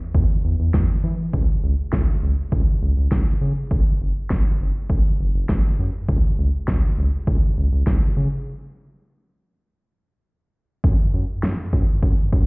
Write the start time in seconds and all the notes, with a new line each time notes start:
0.15 E2, kick
0.44 E2
0.59 E2
0.74 E2, kick, snare
1.04 E3
1.33 C#2, kick
1.63 C#2
1.93 C#2, kick, snare
2.23 C#2
2.52 C#2, kick
2.82 C#2
2.97 C#2
3.12 C#2, kick, snare
3.41 C#3
3.71 F#1, kick
4.01 F#1
4.30 F#1, kick, snare
4.60 F#1
4.90 F#1, kick
5.19 F#1
5.34 F#1
5.49 F#1, kick, snare
5.79 F#2
6.09 C#2, kick
6.38 C#2
6.68 C#2, kick, snare
6.98 C#2
7.27 C#2, kick
7.57 C#2
7.72 C#2
7.87 C#2, kick, snare
8.17 C#3
10.84 F#2, kick
11.14 F#2
11.43 F#2, snare
11.73 F#2, kick
12.03 F#2, kick
12.33 F#2, kick